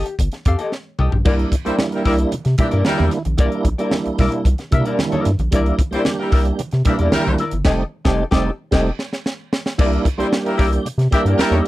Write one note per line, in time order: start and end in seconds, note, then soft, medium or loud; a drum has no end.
0.00 0.14 G4 medium
0.06 muted hollow-body jazz guitar stroke soft
0.06 closed hi-hat soft
0.19 0.29 G1 loud
0.19 muted hollow-body jazz guitar stroke soft
0.19 kick medium
0.19 closed hi-hat medium
0.32 muted hollow-body jazz guitar stroke soft
0.32 snare soft
0.32 closed hi-hat soft
0.45 0.56 F2 loud
0.45 0.60 G4 medium
0.45 0.58 A4 medium
0.45 0.58 F5 medium
0.45 kick medium
0.45 closed hi-hat medium
0.59 0.72 G4 medium
0.59 0.73 A4 medium
0.59 0.73 D#5 medium
0.59 closed hi-hat soft
0.72 muted hollow-body jazz guitar stroke soft
0.72 snare medium
0.99 1.09 C2 loud
0.99 1.16 G4 medium
0.99 1.12 A4 medium
0.99 1.11 D#5 medium
0.99 mid tom medium
1.12 1.22 A#1 medium
1.12 muted hollow-body jazz guitar stroke soft
1.12 floor tom medium
1.25 1.45 C2 medium
1.25 1.55 G3 medium
1.25 1.56 A#3 medium
1.25 1.56 D4 medium
1.25 1.47 E4 medium
1.25 1.56 E4 loud
1.25 1.47 A#4 medium
1.25 1.48 D5 medium
1.25 kick loud
1.25 crash medium
1.25 muted conga medium
1.39 closed hi-hat soft
1.52 muted hollow-body jazz guitar stroke soft
1.52 kick medium
1.52 closed hi-hat medium
1.65 1.71 C2 soft
1.65 2.35 G3 medium
1.65 1.74 G3 medium
1.65 2.35 A#3 medium
1.65 2.35 D4 medium
1.65 1.74 E4 medium
1.65 1.83 E4 medium
1.65 2.36 E4 medium
1.65 1.83 A#4 medium
1.65 1.74 C5 medium
1.65 1.82 D5 medium
1.65 closed hi-hat soft
1.79 snare loud
1.79 high conga medium
1.91 2.04 G3 medium
1.91 2.04 E4 medium
1.91 2.04 A#4 medium
1.91 muted hollow-body jazz guitar stroke soft
1.91 closed hi-hat soft
2.05 2.25 C2 medium
2.05 2.14 G3 medium
2.05 2.27 E4 medium
2.05 2.14 E4 medium
2.05 2.14 A#4 medium
2.05 2.18 A#4 medium
2.05 2.17 D5 medium
2.05 kick loud
2.05 open hi-hat medium
2.18 muted hollow-body jazz guitar stroke soft
2.18 closed hi-hat soft
2.31 2.39 C3 medium
2.31 muted hollow-body jazz guitar stroke soft
2.31 closed hi-hat medium
2.31 muted conga soft
2.45 2.56 C3 loud
2.45 muted hollow-body jazz guitar stroke soft
2.45 snare soft
2.45 closed hi-hat soft
2.58 2.67 E3 medium
2.58 3.18 G3 medium
2.58 3.19 A#3 medium
2.58 2.68 D4 medium
2.58 3.19 D4 medium
2.58 2.66 D#4 medium
2.58 2.72 E4 medium
2.58 2.67 G4 medium
2.58 2.71 A#4 medium
2.58 2.71 E5 medium
2.58 kick medium
2.58 closed hi-hat medium
2.58 low conga medium
2.67 3.23 E4 loud
2.67 2.85 D5 medium
2.71 2.83 G2 medium
2.71 2.83 E4 medium
2.71 2.84 A#4 medium
2.71 closed hi-hat soft
2.85 2.92 E2 soft
2.85 3.08 G3 loud
2.85 3.07 E4 medium
2.85 3.08 A#4 loud
2.85 muted hollow-body jazz guitar stroke soft
2.85 snare loud
2.85 high conga medium
2.97 3.09 E2 medium
2.97 3.11 E4 medium
2.97 3.11 A#4 medium
2.97 3.12 D5 medium
2.97 high conga medium
3.11 muted hollow-body jazz guitar stroke soft
3.11 snare soft
3.11 closed hi-hat medium
3.25 3.36 A#1 medium
3.25 muted hollow-body jazz guitar stroke soft
3.25 closed hi-hat medium
3.25 high conga medium
3.38 3.48 C2 loud
3.38 3.68 G3 medium
3.38 3.69 A#3 medium
3.38 3.69 D4 medium
3.38 3.60 E4 medium
3.38 3.69 E4 medium
3.38 3.60 A#4 medium
3.38 3.61 D5 loud
3.38 kick loud
3.38 closed hi-hat medium
3.38 muted conga soft
3.52 closed hi-hat soft
3.64 3.75 A#1 medium
3.64 muted hollow-body jazz guitar stroke soft
3.64 kick medium
3.64 closed hi-hat medium
3.64 muted conga soft
3.78 4.48 G3 medium
3.78 4.48 A#3 medium
3.78 4.49 D4 medium
3.78 3.97 E4 medium
3.78 4.49 E4 medium
3.78 3.96 A#4 medium
3.78 3.96 D5 medium
3.78 closed hi-hat soft
3.91 snare loud
3.91 high conga medium
4.06 4.11 C2 medium
4.06 muted hollow-body jazz guitar stroke soft
4.06 closed hi-hat soft
4.18 4.29 C2 loud
4.18 4.41 E4 medium
4.18 4.33 A#4 medium
4.18 4.32 D5 loud
4.18 kick loud
4.18 open hi-hat medium
4.18 low conga medium
4.32 muted hollow-body jazz guitar stroke soft
4.32 closed hi-hat soft
4.45 4.55 C2 loud
4.45 muted hollow-body jazz guitar stroke soft
4.45 kick medium
4.45 closed hi-hat medium
4.45 muted conga medium
4.58 muted hollow-body jazz guitar stroke soft
4.58 snare soft
4.58 closed hi-hat soft
4.71 4.82 C3 loud
4.71 5.31 G3 medium
4.71 5.31 A#3 medium
4.71 5.32 D4 medium
4.71 4.86 E4 medium
4.71 5.32 E4 medium
4.71 4.85 A#4 medium
4.71 4.86 E5 medium
4.71 kick medium
4.71 closed hi-hat medium
4.71 low conga medium
4.86 4.98 E4 medium
4.86 4.99 A#4 medium
4.86 4.99 D5 medium
4.86 closed hi-hat soft
4.99 snare loud
4.99 high conga medium
5.12 5.24 E4 medium
5.12 5.25 A#4 medium
5.12 5.25 D5 medium
5.12 closed hi-hat soft
5.12 high conga medium
5.25 5.36 G2 medium
5.25 muted hollow-body jazz guitar stroke soft
5.25 snare soft
5.25 closed hi-hat medium
5.39 5.49 A#1 medium
5.39 muted hollow-body jazz guitar stroke medium
5.39 closed hi-hat soft
5.39 high conga medium
5.51 5.72 C2 loud
5.51 5.81 G3 medium
5.51 5.82 A#3 medium
5.51 5.82 D4 medium
5.51 5.83 E4 medium
5.51 5.74 E4 medium
5.51 5.75 A#4 medium
5.51 kick loud
5.51 closed hi-hat medium
5.51 muted conga medium
5.55 5.75 D5 medium
5.66 closed hi-hat soft
5.79 muted hollow-body jazz guitar stroke soft
5.79 kick medium
5.79 closed hi-hat medium
5.79 muted conga soft
5.91 5.97 C2 medium
5.91 6.61 G3 medium
5.91 6.01 G3 medium
5.91 6.61 A#3 medium
5.91 6.61 D4 medium
5.91 6.01 E4 medium
5.91 6.10 E4 medium
5.91 6.62 G4 medium
5.91 6.10 A#4 medium
5.91 6.01 C5 medium
5.91 6.10 D5 medium
5.91 closed hi-hat soft
6.05 snare loud
6.05 high conga medium
6.19 6.30 G3 medium
6.19 6.30 E4 medium
6.19 6.30 A#4 medium
6.19 muted hollow-body jazz guitar stroke medium
6.32 6.52 C2 loud
6.32 6.40 G3 medium
6.32 6.54 E4 medium
6.32 6.41 E4 medium
6.32 6.40 A#4 medium
6.32 6.46 A#4 medium
6.32 6.45 D5 medium
6.32 kick medium
6.32 open hi-hat medium
6.45 muted hollow-body jazz guitar stroke medium
6.45 closed hi-hat soft
6.59 6.65 C3 soft
6.59 muted hollow-body jazz guitar stroke soft
6.59 closed hi-hat loud
6.59 muted conga soft
6.71 6.83 C3 loud
6.71 muted hollow-body jazz guitar stroke medium
6.71 snare soft
6.71 closed hi-hat soft
6.84 6.94 E3 medium
6.84 7.44 G3 medium
6.84 7.45 A#3 medium
6.84 7.45 D4 medium
6.84 6.94 D4 medium
6.84 7.45 E4 medium
6.84 7.00 E4 medium
6.84 6.94 G4 medium
6.84 6.99 A#4 medium
6.84 kick loud
6.84 closed hi-hat medium
6.84 low conga medium
6.89 6.99 E5 medium
6.99 7.09 E2 medium
6.99 7.11 E4 medium
6.99 7.12 A#4 medium
6.99 7.13 D5 medium
6.99 closed hi-hat soft
7.12 7.18 C2 soft
7.12 7.34 G3 medium
7.12 7.34 E4 medium
7.12 7.34 A#4 loud
7.12 muted hollow-body jazz guitar stroke soft
7.12 snare loud
7.12 high conga medium
7.27 7.36 C2 medium
7.27 high conga medium
7.38 7.56 E4 medium
7.38 7.53 A#4 medium
7.38 7.52 D5 medium
7.38 snare soft
7.38 closed hi-hat medium
7.51 7.62 G1 medium
7.51 muted hollow-body jazz guitar stroke soft
7.51 closed hi-hat medium
7.51 high conga medium
7.64 7.84 F1 loud
7.64 7.83 G3 loud
7.64 7.83 A3 loud
7.64 7.84 C4 loud
7.64 7.84 D#4 medium
7.64 7.83 G4 medium
7.64 7.84 A4 loud
7.64 7.84 D#5 medium
7.64 kick loud
7.64 snare loud
7.64 crash medium
8.05 8.24 F1 loud
8.05 8.23 G3 medium
8.05 8.24 A3 medium
8.05 8.24 C4 medium
8.05 8.25 D#4 medium
8.05 8.25 G4 medium
8.05 8.24 A4 loud
8.05 8.23 D#5 medium
8.05 kick loud
8.05 snare loud
8.31 8.50 F1 loud
8.31 8.50 G3 medium
8.31 8.50 A3 loud
8.31 8.51 C4 medium
8.31 8.51 D#4 medium
8.31 8.50 G4 loud
8.31 8.50 A4 loud
8.31 8.51 D#5 medium
8.31 kick loud
8.31 snare loud
8.71 8.90 F1 loud
8.71 8.90 G3 loud
8.71 8.90 A3 loud
8.71 8.91 C4 medium
8.71 8.91 D#4 medium
8.71 8.90 G4 medium
8.71 8.91 A4 medium
8.71 8.91 D#5 medium
8.71 kick loud
8.71 snare medium
8.71 crash medium
8.99 snare medium
9.13 snare medium
9.26 snare medium
9.53 snare loud
9.66 snare medium
9.78 9.98 C2 loud
9.78 10.08 G3 loud
9.78 10.08 A#3 medium
9.78 10.09 D4 medium
9.78 10.00 E4 medium
9.78 10.09 E4 loud
9.78 10.01 A#4 medium
9.78 10.01 D5 loud
9.78 kick loud
9.78 crash loud
9.93 closed hi-hat soft
10.05 muted hollow-body jazz guitar stroke soft
10.05 kick medium
10.05 closed hi-hat medium
10.18 10.24 C2 medium
10.18 10.87 G3 medium
10.18 10.27 G3 medium
10.18 10.88 A#3 medium
10.18 10.88 D4 medium
10.18 10.27 E4 medium
10.18 10.36 E4 medium
10.18 10.88 G4 medium
10.18 10.36 A#4 medium
10.18 10.26 C5 medium
10.18 10.35 D5 medium
10.18 closed hi-hat soft
10.33 snare loud
10.45 10.56 G3 medium
10.45 10.56 E4 medium
10.45 10.56 A#4 medium
10.45 muted hollow-body jazz guitar stroke soft
10.45 closed hi-hat soft
10.58 10.78 C2 medium
10.58 10.67 G3 medium
10.58 10.66 E4 medium
10.58 10.80 E4 medium
10.58 10.66 A#4 medium
10.58 10.73 A#4 medium
10.58 10.71 D5 medium
10.58 kick loud
10.58 open hi-hat medium
10.72 muted hollow-body jazz guitar stroke soft
10.72 closed hi-hat soft
10.85 10.91 C3 medium
10.85 muted hollow-body jazz guitar stroke soft
10.85 closed hi-hat loud
10.98 11.08 C3 loud
10.98 muted hollow-body jazz guitar stroke soft
10.98 snare soft
10.98 closed hi-hat soft
11.11 11.21 E3 medium
11.11 11.68 G3 loud
11.11 11.68 A#3 medium
11.11 11.68 D4 medium
11.11 11.21 D4 medium
11.11 11.27 E4 medium
11.11 11.20 G4 medium
11.11 11.68 G4 loud
11.11 11.26 A#4 medium
11.11 11.26 E5 medium
11.11 kick medium
11.11 closed hi-hat medium
11.25 11.35 G2 medium
11.25 11.39 E4 medium
11.25 11.39 A#4 medium
11.25 11.40 D5 medium
11.25 closed hi-hat soft
11.38 11.44 E2 soft
11.38 11.59 G3 loud
11.38 11.60 E4 loud
11.38 11.59 A#4 loud
11.38 muted hollow-body jazz guitar stroke soft
11.38 snare loud
11.51 11.61 E2 loud
11.51 11.65 E4 medium
11.51 11.65 A#4 medium
11.51 11.66 D5 medium
11.51 closed hi-hat soft